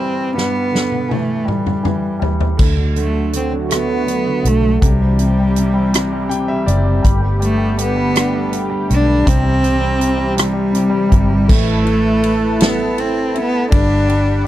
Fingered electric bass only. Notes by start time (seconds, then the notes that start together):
2.59 D2
4.45 B1
4.82 C2
6.67 F#1
7.05 G1
8.91 B1
9.27 C2
11.12 G1
11.50 A1
13.73 G1